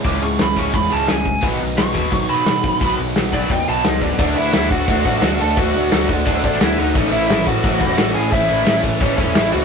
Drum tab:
CC |--------|--------|--------|x-x-x-x-|
HH |o-o-o-o-|o-o-o-o-|o-o-o-o-|--------|
SD |--o---o-|--o---o-|--o---o-|--o---o-|
BD |o--oo--o|o--oo--o|o--oo--o|o--ooo--|

CC |x-x-x-x-|x-x-x-x-|x-x-x-x-|
HH |--------|--------|--------|
SD |--o---o-|--o---o-|--o---o-|
BD |o--ooo--|o--ooo--|o--ooo--|